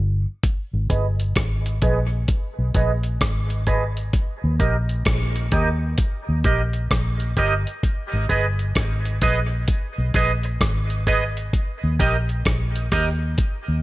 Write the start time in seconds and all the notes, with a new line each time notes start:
Already playing: G1
0.43 kick, closed hi-hat
0.73 G#1
0.90 G1 G#4 B4 D#5, kick, closed hi-hat
1.20 closed hi-hat
1.36 G#1, kick, cross-stick, closed hi-hat
1.66 closed hi-hat
1.82 A#1 G#4 B4 D#5, kick, closed hi-hat
2.28 kick, closed hi-hat
2.59 B1
2.75 A#1 G#4 B4 D#5, kick, closed hi-hat
3.03 closed hi-hat
3.21 G#1, kick, cross-stick, closed hi-hat
3.50 closed hi-hat
3.67 G#4 B4 D#5, kick, closed hi-hat
3.97 closed hi-hat
4.13 kick, closed hi-hat
4.44 D#2
4.59 A#1 G4 A#4 D#5, kick, closed hi-hat
4.89 closed hi-hat
5.05 A#1, kick, cross-stick, closed hi-hat
5.36 closed hi-hat
5.52 D#2 G4 A#4 D#5, kick, closed hi-hat
5.98 kick, closed hi-hat
6.29 D#2
6.44 A#1 G4 A#4 D#5, kick, closed hi-hat
6.73 closed hi-hat
6.91 A#1, kick, cross-stick, closed hi-hat
7.20 closed hi-hat
7.37 G1 G4 A#4 D#5, kick, closed hi-hat
7.67 closed hi-hat
7.83 kick, closed hi-hat
8.13 G#1
8.29 G1 G#4 B4 D#5, kick, closed hi-hat
8.59 closed hi-hat
8.75 G#1, kick, cross-stick, closed hi-hat
9.05 closed hi-hat
9.22 A#1 G#4 B4 D#5, kick, closed hi-hat
9.68 kick, closed hi-hat
9.98 B1
10.14 A#1 G#4 B4 D#5, kick, closed hi-hat
10.43 muted clean electric guitar stroke, closed hi-hat
10.61 G#1, kick, cross-stick, closed hi-hat
10.90 closed hi-hat
11.07 G#4 B4 D#5, kick, closed hi-hat
11.37 closed hi-hat
11.53 kick, closed hi-hat
11.84 D#2
11.99 A#1 G4 A#4 D#5, kick, closed hi-hat
12.29 closed hi-hat
12.45 A#1, kick, cross-stick, closed hi-hat
12.76 closed hi-hat
12.92 D#2 G4 A#4 D#5, kick, cross-stick, open hi-hat
13.38 kick, closed hi-hat
13.68 D#2